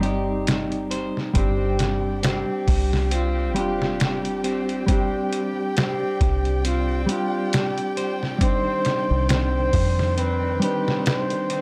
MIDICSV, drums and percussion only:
0, 0, Header, 1, 2, 480
1, 0, Start_track
1, 0, Key_signature, -3, "minor"
1, 0, Tempo, 882353
1, 734, Time_signature, 4, 2, 24, 8
1, 6317, End_track
2, 0, Start_track
2, 0, Title_t, "Drums"
2, 17, Note_on_c, 9, 42, 65
2, 71, Note_off_c, 9, 42, 0
2, 257, Note_on_c, 9, 42, 86
2, 263, Note_on_c, 9, 38, 108
2, 311, Note_off_c, 9, 42, 0
2, 318, Note_off_c, 9, 38, 0
2, 391, Note_on_c, 9, 42, 42
2, 445, Note_off_c, 9, 42, 0
2, 497, Note_on_c, 9, 42, 70
2, 551, Note_off_c, 9, 42, 0
2, 637, Note_on_c, 9, 38, 33
2, 691, Note_off_c, 9, 38, 0
2, 735, Note_on_c, 9, 36, 108
2, 735, Note_on_c, 9, 42, 84
2, 789, Note_off_c, 9, 42, 0
2, 790, Note_off_c, 9, 36, 0
2, 974, Note_on_c, 9, 42, 65
2, 981, Note_on_c, 9, 38, 57
2, 1029, Note_off_c, 9, 42, 0
2, 1035, Note_off_c, 9, 38, 0
2, 1215, Note_on_c, 9, 42, 89
2, 1221, Note_on_c, 9, 38, 109
2, 1269, Note_off_c, 9, 42, 0
2, 1276, Note_off_c, 9, 38, 0
2, 1456, Note_on_c, 9, 36, 87
2, 1456, Note_on_c, 9, 46, 78
2, 1510, Note_off_c, 9, 36, 0
2, 1510, Note_off_c, 9, 46, 0
2, 1595, Note_on_c, 9, 38, 47
2, 1649, Note_off_c, 9, 38, 0
2, 1694, Note_on_c, 9, 42, 89
2, 1748, Note_off_c, 9, 42, 0
2, 1936, Note_on_c, 9, 42, 67
2, 1990, Note_off_c, 9, 42, 0
2, 2076, Note_on_c, 9, 38, 50
2, 2131, Note_off_c, 9, 38, 0
2, 2176, Note_on_c, 9, 42, 85
2, 2183, Note_on_c, 9, 38, 113
2, 2231, Note_off_c, 9, 42, 0
2, 2237, Note_off_c, 9, 38, 0
2, 2312, Note_on_c, 9, 42, 43
2, 2366, Note_off_c, 9, 42, 0
2, 2417, Note_on_c, 9, 42, 67
2, 2471, Note_off_c, 9, 42, 0
2, 2552, Note_on_c, 9, 42, 41
2, 2606, Note_off_c, 9, 42, 0
2, 2656, Note_on_c, 9, 42, 86
2, 2657, Note_on_c, 9, 36, 109
2, 2711, Note_off_c, 9, 36, 0
2, 2711, Note_off_c, 9, 42, 0
2, 2897, Note_on_c, 9, 42, 68
2, 2952, Note_off_c, 9, 42, 0
2, 3137, Note_on_c, 9, 42, 88
2, 3144, Note_on_c, 9, 38, 113
2, 3191, Note_off_c, 9, 42, 0
2, 3198, Note_off_c, 9, 38, 0
2, 3376, Note_on_c, 9, 36, 94
2, 3377, Note_on_c, 9, 42, 64
2, 3431, Note_off_c, 9, 36, 0
2, 3432, Note_off_c, 9, 42, 0
2, 3510, Note_on_c, 9, 42, 45
2, 3565, Note_off_c, 9, 42, 0
2, 3616, Note_on_c, 9, 42, 90
2, 3670, Note_off_c, 9, 42, 0
2, 3857, Note_on_c, 9, 42, 69
2, 3911, Note_off_c, 9, 42, 0
2, 4096, Note_on_c, 9, 42, 88
2, 4103, Note_on_c, 9, 38, 113
2, 4150, Note_off_c, 9, 42, 0
2, 4157, Note_off_c, 9, 38, 0
2, 4230, Note_on_c, 9, 42, 43
2, 4285, Note_off_c, 9, 42, 0
2, 4337, Note_on_c, 9, 42, 68
2, 4391, Note_off_c, 9, 42, 0
2, 4476, Note_on_c, 9, 38, 34
2, 4530, Note_off_c, 9, 38, 0
2, 4575, Note_on_c, 9, 36, 107
2, 4575, Note_on_c, 9, 42, 89
2, 4629, Note_off_c, 9, 36, 0
2, 4629, Note_off_c, 9, 42, 0
2, 4813, Note_on_c, 9, 42, 72
2, 4820, Note_on_c, 9, 38, 58
2, 4868, Note_off_c, 9, 42, 0
2, 4874, Note_off_c, 9, 38, 0
2, 5055, Note_on_c, 9, 42, 92
2, 5061, Note_on_c, 9, 38, 114
2, 5109, Note_off_c, 9, 42, 0
2, 5116, Note_off_c, 9, 38, 0
2, 5293, Note_on_c, 9, 46, 74
2, 5294, Note_on_c, 9, 36, 93
2, 5348, Note_off_c, 9, 46, 0
2, 5349, Note_off_c, 9, 36, 0
2, 5436, Note_on_c, 9, 38, 44
2, 5491, Note_off_c, 9, 38, 0
2, 5536, Note_on_c, 9, 42, 96
2, 5591, Note_off_c, 9, 42, 0
2, 5778, Note_on_c, 9, 42, 66
2, 5832, Note_off_c, 9, 42, 0
2, 5918, Note_on_c, 9, 38, 47
2, 5973, Note_off_c, 9, 38, 0
2, 6016, Note_on_c, 9, 42, 88
2, 6022, Note_on_c, 9, 38, 118
2, 6070, Note_off_c, 9, 42, 0
2, 6077, Note_off_c, 9, 38, 0
2, 6149, Note_on_c, 9, 42, 44
2, 6204, Note_off_c, 9, 42, 0
2, 6255, Note_on_c, 9, 42, 66
2, 6310, Note_off_c, 9, 42, 0
2, 6317, End_track
0, 0, End_of_file